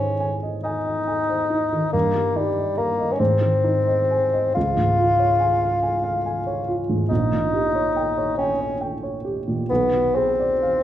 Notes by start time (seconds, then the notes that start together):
Already playing: G#2 D#3 C#4 D#4
0.00 C5
0.20 G#5
0.43 D#5
0.63 D#4 G#5
0.86 D#5
1.07 G#5
1.29 C5
1.50 D#4
1.73 D#3
1.92 G2 A#3
2.15 G3
2.36 G3 D#4
2.57 D#5
2.77 A#3 A#5
2.99 D#5
3.12 C#4
3.19 G#2 C4
3.41 D#3
3.64 D#4
3.86 D#5
4.11 G#5
4.33 D#5
4.54 C#2 F4
4.77 G#2
4.98 F4
5.19 C#5
5.40 G#5
5.61 F5
5.83 G#5
6.04 F5
6.26 G#5
6.47 C#5
6.69 F4
6.89 G#2
7.09 A#1 D#4
7.32 A#2
7.53 G4
7.75 C#5
7.97 G5
8.18 C#5
8.37 C#4 G5
8.61 C#5
8.81 G5
9.03 C#5
9.25 G4
9.48 A#2
9.69 B1 B3
9.93 B2
10.15 C4 G#4
10.39 D5
10.63 F5